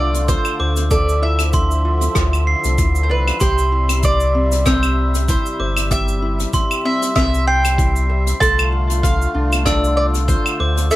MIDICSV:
0, 0, Header, 1, 7, 480
1, 0, Start_track
1, 0, Tempo, 625000
1, 700, Time_signature, 4, 2, 24, 8
1, 8417, End_track
2, 0, Start_track
2, 0, Title_t, "Glockenspiel"
2, 0, Program_c, 0, 9
2, 460, Note_on_c, 0, 86, 79
2, 689, Note_off_c, 0, 86, 0
2, 1181, Note_on_c, 0, 84, 99
2, 1410, Note_off_c, 0, 84, 0
2, 1898, Note_on_c, 0, 96, 89
2, 2128, Note_off_c, 0, 96, 0
2, 2613, Note_on_c, 0, 84, 86
2, 2846, Note_off_c, 0, 84, 0
2, 3581, Note_on_c, 0, 88, 86
2, 3810, Note_off_c, 0, 88, 0
2, 4298, Note_on_c, 0, 86, 72
2, 4528, Note_off_c, 0, 86, 0
2, 5022, Note_on_c, 0, 84, 98
2, 5250, Note_off_c, 0, 84, 0
2, 5742, Note_on_c, 0, 96, 78
2, 5970, Note_off_c, 0, 96, 0
2, 6461, Note_on_c, 0, 84, 85
2, 6690, Note_off_c, 0, 84, 0
2, 7420, Note_on_c, 0, 88, 86
2, 7649, Note_off_c, 0, 88, 0
2, 8142, Note_on_c, 0, 86, 75
2, 8370, Note_off_c, 0, 86, 0
2, 8417, End_track
3, 0, Start_track
3, 0, Title_t, "Mandolin"
3, 0, Program_c, 1, 25
3, 0, Note_on_c, 1, 74, 92
3, 215, Note_off_c, 1, 74, 0
3, 218, Note_on_c, 1, 72, 97
3, 694, Note_off_c, 1, 72, 0
3, 697, Note_on_c, 1, 74, 98
3, 921, Note_off_c, 1, 74, 0
3, 943, Note_on_c, 1, 76, 89
3, 1871, Note_off_c, 1, 76, 0
3, 2330, Note_on_c, 1, 72, 55
3, 2378, Note_off_c, 1, 72, 0
3, 2387, Note_on_c, 1, 71, 77
3, 2619, Note_off_c, 1, 71, 0
3, 2622, Note_on_c, 1, 72, 97
3, 3070, Note_off_c, 1, 72, 0
3, 3107, Note_on_c, 1, 74, 100
3, 3581, Note_off_c, 1, 74, 0
3, 3584, Note_on_c, 1, 72, 90
3, 4058, Note_off_c, 1, 72, 0
3, 4067, Note_on_c, 1, 72, 89
3, 4513, Note_off_c, 1, 72, 0
3, 4543, Note_on_c, 1, 76, 116
3, 5255, Note_off_c, 1, 76, 0
3, 5264, Note_on_c, 1, 76, 100
3, 5488, Note_off_c, 1, 76, 0
3, 5497, Note_on_c, 1, 76, 116
3, 5737, Note_off_c, 1, 76, 0
3, 5740, Note_on_c, 1, 79, 109
3, 6189, Note_off_c, 1, 79, 0
3, 6454, Note_on_c, 1, 81, 124
3, 6906, Note_off_c, 1, 81, 0
3, 6937, Note_on_c, 1, 77, 109
3, 7415, Note_on_c, 1, 74, 99
3, 7433, Note_off_c, 1, 77, 0
3, 7647, Note_off_c, 1, 74, 0
3, 7657, Note_on_c, 1, 74, 102
3, 7722, Note_off_c, 1, 74, 0
3, 7894, Note_on_c, 1, 72, 98
3, 8379, Note_on_c, 1, 76, 114
3, 8391, Note_off_c, 1, 72, 0
3, 8417, Note_off_c, 1, 76, 0
3, 8417, End_track
4, 0, Start_track
4, 0, Title_t, "Ukulele"
4, 0, Program_c, 2, 24
4, 0, Note_on_c, 2, 62, 79
4, 0, Note_on_c, 2, 65, 67
4, 0, Note_on_c, 2, 69, 88
4, 212, Note_off_c, 2, 65, 0
4, 215, Note_on_c, 2, 65, 63
4, 456, Note_on_c, 2, 72, 69
4, 693, Note_off_c, 2, 72, 0
4, 696, Note_off_c, 2, 69, 0
4, 696, Note_on_c, 2, 69, 78
4, 935, Note_off_c, 2, 65, 0
4, 938, Note_on_c, 2, 64, 66
4, 961, Note_off_c, 2, 62, 0
4, 1420, Note_on_c, 2, 65, 62
4, 1649, Note_off_c, 2, 65, 0
4, 1658, Note_on_c, 2, 65, 75
4, 2135, Note_off_c, 2, 64, 0
4, 2138, Note_on_c, 2, 64, 57
4, 2376, Note_on_c, 2, 74, 66
4, 2614, Note_off_c, 2, 74, 0
4, 2617, Note_on_c, 2, 67, 85
4, 2618, Note_off_c, 2, 69, 0
4, 2672, Note_off_c, 2, 65, 0
4, 2853, Note_off_c, 2, 64, 0
4, 2856, Note_on_c, 2, 64, 64
4, 3337, Note_on_c, 2, 60, 58
4, 3575, Note_off_c, 2, 60, 0
4, 3578, Note_on_c, 2, 60, 78
4, 4050, Note_off_c, 2, 64, 0
4, 4059, Note_on_c, 2, 64, 65
4, 4297, Note_on_c, 2, 72, 66
4, 4528, Note_off_c, 2, 67, 0
4, 4537, Note_on_c, 2, 67, 87
4, 4770, Note_off_c, 2, 64, 0
4, 4779, Note_on_c, 2, 64, 62
4, 5256, Note_off_c, 2, 60, 0
4, 5259, Note_on_c, 2, 60, 67
4, 5495, Note_off_c, 2, 60, 0
4, 5498, Note_on_c, 2, 60, 77
4, 5968, Note_off_c, 2, 64, 0
4, 5977, Note_on_c, 2, 64, 67
4, 6214, Note_off_c, 2, 64, 0
4, 6217, Note_off_c, 2, 72, 0
4, 6217, Note_on_c, 2, 72, 72
4, 6456, Note_off_c, 2, 67, 0
4, 6459, Note_on_c, 2, 69, 85
4, 6695, Note_off_c, 2, 72, 0
4, 6698, Note_on_c, 2, 65, 65
4, 7174, Note_off_c, 2, 60, 0
4, 7177, Note_on_c, 2, 62, 67
4, 7414, Note_off_c, 2, 62, 0
4, 7417, Note_on_c, 2, 62, 80
4, 7888, Note_off_c, 2, 65, 0
4, 7898, Note_on_c, 2, 65, 62
4, 8137, Note_on_c, 2, 72, 75
4, 8367, Note_off_c, 2, 69, 0
4, 8376, Note_on_c, 2, 69, 91
4, 8417, Note_off_c, 2, 62, 0
4, 8417, Note_off_c, 2, 65, 0
4, 8417, Note_off_c, 2, 69, 0
4, 8417, Note_off_c, 2, 72, 0
4, 8417, End_track
5, 0, Start_track
5, 0, Title_t, "Accordion"
5, 0, Program_c, 3, 21
5, 0, Note_on_c, 3, 50, 77
5, 0, Note_on_c, 3, 57, 70
5, 0, Note_on_c, 3, 65, 90
5, 678, Note_off_c, 3, 65, 0
5, 679, Note_off_c, 3, 57, 0
5, 699, Note_on_c, 3, 76, 82
5, 700, Note_on_c, 3, 53, 74
5, 2586, Note_off_c, 3, 50, 0
5, 2601, Note_off_c, 3, 53, 0
5, 2617, Note_on_c, 3, 55, 70
5, 2618, Note_on_c, 3, 48, 80
5, 6428, Note_off_c, 3, 48, 0
5, 6428, Note_off_c, 3, 55, 0
5, 6428, Note_off_c, 3, 76, 0
5, 6453, Note_on_c, 3, 57, 77
5, 6453, Note_on_c, 3, 65, 89
5, 6456, Note_on_c, 3, 50, 76
5, 8357, Note_off_c, 3, 57, 0
5, 8357, Note_off_c, 3, 65, 0
5, 8359, Note_off_c, 3, 50, 0
5, 8380, Note_on_c, 3, 50, 80
5, 8380, Note_on_c, 3, 53, 71
5, 8381, Note_on_c, 3, 62, 84
5, 8417, Note_off_c, 3, 50, 0
5, 8417, Note_off_c, 3, 53, 0
5, 8417, Note_off_c, 3, 62, 0
5, 8417, End_track
6, 0, Start_track
6, 0, Title_t, "Sub bass"
6, 0, Program_c, 4, 38
6, 0, Note_on_c, 4, 36, 86
6, 280, Note_off_c, 4, 36, 0
6, 461, Note_on_c, 4, 38, 82
6, 1602, Note_off_c, 4, 38, 0
6, 1658, Note_on_c, 4, 38, 99
6, 1959, Note_off_c, 4, 38, 0
6, 2033, Note_on_c, 4, 36, 111
6, 2134, Note_off_c, 4, 36, 0
6, 2139, Note_on_c, 4, 38, 97
6, 2380, Note_on_c, 4, 36, 82
6, 2391, Note_off_c, 4, 38, 0
6, 2547, Note_off_c, 4, 36, 0
6, 2618, Note_on_c, 4, 36, 98
6, 4119, Note_off_c, 4, 36, 0
6, 4298, Note_on_c, 4, 31, 97
6, 4960, Note_off_c, 4, 31, 0
6, 5499, Note_on_c, 4, 36, 103
6, 6401, Note_off_c, 4, 36, 0
6, 6459, Note_on_c, 4, 36, 95
6, 7121, Note_off_c, 4, 36, 0
6, 7181, Note_on_c, 4, 36, 85
6, 7960, Note_off_c, 4, 36, 0
6, 8141, Note_on_c, 4, 38, 84
6, 8380, Note_off_c, 4, 38, 0
6, 8417, End_track
7, 0, Start_track
7, 0, Title_t, "Drums"
7, 109, Note_on_c, 9, 42, 63
7, 115, Note_on_c, 9, 69, 75
7, 186, Note_off_c, 9, 42, 0
7, 192, Note_off_c, 9, 69, 0
7, 215, Note_on_c, 9, 42, 61
7, 218, Note_on_c, 9, 36, 120
7, 218, Note_on_c, 9, 69, 69
7, 292, Note_off_c, 9, 42, 0
7, 295, Note_off_c, 9, 36, 0
7, 295, Note_off_c, 9, 69, 0
7, 345, Note_on_c, 9, 75, 70
7, 346, Note_on_c, 9, 69, 51
7, 422, Note_off_c, 9, 75, 0
7, 423, Note_off_c, 9, 69, 0
7, 586, Note_on_c, 9, 69, 72
7, 589, Note_on_c, 9, 42, 65
7, 663, Note_off_c, 9, 69, 0
7, 666, Note_off_c, 9, 42, 0
7, 696, Note_on_c, 9, 69, 73
7, 698, Note_on_c, 9, 36, 104
7, 699, Note_on_c, 9, 42, 56
7, 772, Note_off_c, 9, 69, 0
7, 774, Note_off_c, 9, 36, 0
7, 775, Note_off_c, 9, 42, 0
7, 836, Note_on_c, 9, 69, 49
7, 913, Note_off_c, 9, 69, 0
7, 1066, Note_on_c, 9, 75, 73
7, 1068, Note_on_c, 9, 42, 68
7, 1072, Note_on_c, 9, 69, 73
7, 1142, Note_off_c, 9, 75, 0
7, 1144, Note_off_c, 9, 42, 0
7, 1148, Note_off_c, 9, 69, 0
7, 1174, Note_on_c, 9, 69, 73
7, 1175, Note_on_c, 9, 42, 56
7, 1178, Note_on_c, 9, 36, 104
7, 1250, Note_off_c, 9, 69, 0
7, 1252, Note_off_c, 9, 42, 0
7, 1255, Note_off_c, 9, 36, 0
7, 1314, Note_on_c, 9, 69, 51
7, 1391, Note_off_c, 9, 69, 0
7, 1544, Note_on_c, 9, 42, 64
7, 1550, Note_on_c, 9, 69, 73
7, 1621, Note_off_c, 9, 42, 0
7, 1627, Note_off_c, 9, 69, 0
7, 1652, Note_on_c, 9, 37, 79
7, 1653, Note_on_c, 9, 42, 49
7, 1657, Note_on_c, 9, 36, 114
7, 1657, Note_on_c, 9, 69, 68
7, 1729, Note_off_c, 9, 37, 0
7, 1730, Note_off_c, 9, 42, 0
7, 1734, Note_off_c, 9, 36, 0
7, 1734, Note_off_c, 9, 69, 0
7, 1791, Note_on_c, 9, 75, 63
7, 1798, Note_on_c, 9, 69, 45
7, 1868, Note_off_c, 9, 75, 0
7, 1874, Note_off_c, 9, 69, 0
7, 2028, Note_on_c, 9, 69, 71
7, 2035, Note_on_c, 9, 42, 67
7, 2105, Note_off_c, 9, 69, 0
7, 2112, Note_off_c, 9, 42, 0
7, 2135, Note_on_c, 9, 69, 70
7, 2137, Note_on_c, 9, 42, 62
7, 2138, Note_on_c, 9, 36, 112
7, 2211, Note_off_c, 9, 69, 0
7, 2214, Note_off_c, 9, 36, 0
7, 2214, Note_off_c, 9, 42, 0
7, 2268, Note_on_c, 9, 69, 52
7, 2344, Note_off_c, 9, 69, 0
7, 2515, Note_on_c, 9, 42, 68
7, 2515, Note_on_c, 9, 75, 76
7, 2592, Note_off_c, 9, 42, 0
7, 2592, Note_off_c, 9, 75, 0
7, 2611, Note_on_c, 9, 69, 65
7, 2616, Note_on_c, 9, 42, 61
7, 2618, Note_on_c, 9, 36, 102
7, 2687, Note_off_c, 9, 69, 0
7, 2693, Note_off_c, 9, 42, 0
7, 2695, Note_off_c, 9, 36, 0
7, 2751, Note_on_c, 9, 69, 53
7, 2827, Note_off_c, 9, 69, 0
7, 2987, Note_on_c, 9, 42, 69
7, 2989, Note_on_c, 9, 75, 72
7, 2991, Note_on_c, 9, 69, 72
7, 3064, Note_off_c, 9, 42, 0
7, 3066, Note_off_c, 9, 75, 0
7, 3068, Note_off_c, 9, 69, 0
7, 3092, Note_on_c, 9, 42, 54
7, 3095, Note_on_c, 9, 69, 75
7, 3098, Note_on_c, 9, 36, 100
7, 3169, Note_off_c, 9, 42, 0
7, 3171, Note_off_c, 9, 69, 0
7, 3175, Note_off_c, 9, 36, 0
7, 3226, Note_on_c, 9, 69, 46
7, 3303, Note_off_c, 9, 69, 0
7, 3468, Note_on_c, 9, 69, 73
7, 3474, Note_on_c, 9, 42, 69
7, 3545, Note_off_c, 9, 69, 0
7, 3551, Note_off_c, 9, 42, 0
7, 3576, Note_on_c, 9, 37, 84
7, 3576, Note_on_c, 9, 69, 59
7, 3577, Note_on_c, 9, 42, 60
7, 3579, Note_on_c, 9, 36, 110
7, 3653, Note_off_c, 9, 37, 0
7, 3653, Note_off_c, 9, 69, 0
7, 3654, Note_off_c, 9, 42, 0
7, 3655, Note_off_c, 9, 36, 0
7, 3708, Note_on_c, 9, 75, 80
7, 3710, Note_on_c, 9, 69, 51
7, 3785, Note_off_c, 9, 75, 0
7, 3786, Note_off_c, 9, 69, 0
7, 3951, Note_on_c, 9, 69, 84
7, 3953, Note_on_c, 9, 42, 67
7, 4028, Note_off_c, 9, 69, 0
7, 4030, Note_off_c, 9, 42, 0
7, 4057, Note_on_c, 9, 69, 75
7, 4059, Note_on_c, 9, 36, 108
7, 4059, Note_on_c, 9, 42, 65
7, 4134, Note_off_c, 9, 69, 0
7, 4135, Note_off_c, 9, 36, 0
7, 4135, Note_off_c, 9, 42, 0
7, 4192, Note_on_c, 9, 69, 50
7, 4269, Note_off_c, 9, 69, 0
7, 4428, Note_on_c, 9, 75, 88
7, 4430, Note_on_c, 9, 42, 66
7, 4431, Note_on_c, 9, 69, 85
7, 4504, Note_off_c, 9, 75, 0
7, 4507, Note_off_c, 9, 42, 0
7, 4508, Note_off_c, 9, 69, 0
7, 4535, Note_on_c, 9, 42, 64
7, 4539, Note_on_c, 9, 36, 99
7, 4540, Note_on_c, 9, 69, 67
7, 4612, Note_off_c, 9, 42, 0
7, 4616, Note_off_c, 9, 36, 0
7, 4617, Note_off_c, 9, 69, 0
7, 4670, Note_on_c, 9, 69, 48
7, 4747, Note_off_c, 9, 69, 0
7, 4913, Note_on_c, 9, 69, 67
7, 4915, Note_on_c, 9, 42, 69
7, 4989, Note_off_c, 9, 69, 0
7, 4991, Note_off_c, 9, 42, 0
7, 5017, Note_on_c, 9, 69, 64
7, 5018, Note_on_c, 9, 36, 97
7, 5021, Note_on_c, 9, 42, 59
7, 5093, Note_off_c, 9, 69, 0
7, 5095, Note_off_c, 9, 36, 0
7, 5098, Note_off_c, 9, 42, 0
7, 5153, Note_on_c, 9, 75, 82
7, 5154, Note_on_c, 9, 69, 48
7, 5230, Note_off_c, 9, 75, 0
7, 5231, Note_off_c, 9, 69, 0
7, 5392, Note_on_c, 9, 42, 58
7, 5395, Note_on_c, 9, 69, 79
7, 5469, Note_off_c, 9, 42, 0
7, 5472, Note_off_c, 9, 69, 0
7, 5493, Note_on_c, 9, 42, 69
7, 5498, Note_on_c, 9, 36, 106
7, 5500, Note_on_c, 9, 37, 77
7, 5570, Note_off_c, 9, 42, 0
7, 5575, Note_off_c, 9, 36, 0
7, 5577, Note_off_c, 9, 37, 0
7, 5638, Note_on_c, 9, 69, 47
7, 5715, Note_off_c, 9, 69, 0
7, 5874, Note_on_c, 9, 69, 73
7, 5874, Note_on_c, 9, 75, 76
7, 5875, Note_on_c, 9, 42, 68
7, 5950, Note_off_c, 9, 75, 0
7, 5951, Note_off_c, 9, 69, 0
7, 5952, Note_off_c, 9, 42, 0
7, 5978, Note_on_c, 9, 36, 115
7, 5979, Note_on_c, 9, 42, 57
7, 5982, Note_on_c, 9, 69, 61
7, 6055, Note_off_c, 9, 36, 0
7, 6056, Note_off_c, 9, 42, 0
7, 6059, Note_off_c, 9, 69, 0
7, 6114, Note_on_c, 9, 69, 54
7, 6190, Note_off_c, 9, 69, 0
7, 6350, Note_on_c, 9, 42, 64
7, 6355, Note_on_c, 9, 69, 82
7, 6427, Note_off_c, 9, 42, 0
7, 6431, Note_off_c, 9, 69, 0
7, 6458, Note_on_c, 9, 36, 94
7, 6467, Note_on_c, 9, 42, 65
7, 6468, Note_on_c, 9, 69, 69
7, 6535, Note_off_c, 9, 36, 0
7, 6543, Note_off_c, 9, 42, 0
7, 6544, Note_off_c, 9, 69, 0
7, 6596, Note_on_c, 9, 69, 54
7, 6598, Note_on_c, 9, 75, 92
7, 6673, Note_off_c, 9, 69, 0
7, 6675, Note_off_c, 9, 75, 0
7, 6832, Note_on_c, 9, 42, 71
7, 6841, Note_on_c, 9, 69, 80
7, 6909, Note_off_c, 9, 42, 0
7, 6918, Note_off_c, 9, 69, 0
7, 6938, Note_on_c, 9, 36, 99
7, 6943, Note_on_c, 9, 42, 67
7, 6948, Note_on_c, 9, 69, 70
7, 7015, Note_off_c, 9, 36, 0
7, 7020, Note_off_c, 9, 42, 0
7, 7025, Note_off_c, 9, 69, 0
7, 7078, Note_on_c, 9, 69, 50
7, 7155, Note_off_c, 9, 69, 0
7, 7315, Note_on_c, 9, 69, 73
7, 7316, Note_on_c, 9, 75, 80
7, 7318, Note_on_c, 9, 42, 65
7, 7391, Note_off_c, 9, 69, 0
7, 7393, Note_off_c, 9, 75, 0
7, 7395, Note_off_c, 9, 42, 0
7, 7416, Note_on_c, 9, 37, 76
7, 7417, Note_on_c, 9, 42, 64
7, 7418, Note_on_c, 9, 36, 110
7, 7424, Note_on_c, 9, 69, 74
7, 7493, Note_off_c, 9, 37, 0
7, 7494, Note_off_c, 9, 42, 0
7, 7495, Note_off_c, 9, 36, 0
7, 7500, Note_off_c, 9, 69, 0
7, 7558, Note_on_c, 9, 69, 50
7, 7635, Note_off_c, 9, 69, 0
7, 7790, Note_on_c, 9, 69, 78
7, 7794, Note_on_c, 9, 42, 64
7, 7867, Note_off_c, 9, 69, 0
7, 7871, Note_off_c, 9, 42, 0
7, 7898, Note_on_c, 9, 36, 102
7, 7900, Note_on_c, 9, 42, 62
7, 7900, Note_on_c, 9, 69, 64
7, 7975, Note_off_c, 9, 36, 0
7, 7977, Note_off_c, 9, 42, 0
7, 7977, Note_off_c, 9, 69, 0
7, 8031, Note_on_c, 9, 75, 82
7, 8037, Note_on_c, 9, 69, 47
7, 8108, Note_off_c, 9, 75, 0
7, 8114, Note_off_c, 9, 69, 0
7, 8272, Note_on_c, 9, 42, 82
7, 8277, Note_on_c, 9, 69, 76
7, 8349, Note_off_c, 9, 42, 0
7, 8353, Note_off_c, 9, 69, 0
7, 8376, Note_on_c, 9, 69, 66
7, 8385, Note_on_c, 9, 42, 72
7, 8417, Note_off_c, 9, 42, 0
7, 8417, Note_off_c, 9, 69, 0
7, 8417, End_track
0, 0, End_of_file